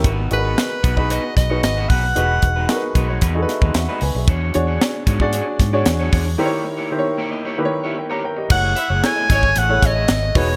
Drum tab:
CC |----------------|----------------|----------------|----------------|
HH |x-x-x-x-x-x-x-o-|x-x-x-x-x-x-x-o-|x-x-x-x-x-x-x-o-|----------------|
SD |----o-----o-o---|----o-----o-o---|----o-----o-o---|----------------|
BD |o-----oo--o---o-|--o---o-o--o----|o-----oo--o---o-|----------------|

CC |x---------------|
HH |--x-x-x-x-x-x-o-|
SD |----o-o---o-o---|
BD |o-----oo--o---o-|